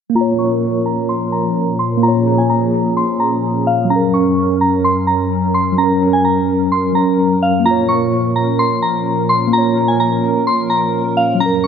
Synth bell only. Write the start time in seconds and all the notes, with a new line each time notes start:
0.16 A#5
0.39 C#6
0.86 A#5
1.09 C6
1.32 A#5
1.79 C6
2.03 A#5
2.38 G#5
2.50 A#5
2.97 C6
3.20 A#5
3.67 F5
3.90 A#5
4.14 C#6
4.61 A#5
4.84 C6
5.07 A#5
5.54 C6
5.78 A#5
6.13 G#5
6.25 A#5
6.72 C6
6.95 A#5
7.43 F5
7.66 A#5
7.89 C#6
8.36 A#5
8.59 C6
8.82 A#5
9.29 C6
9.53 A#5
9.88 G#5
10.00 A#5
10.47 C6
10.70 A#5
11.17 F5
11.40 A#5
11.64 C#6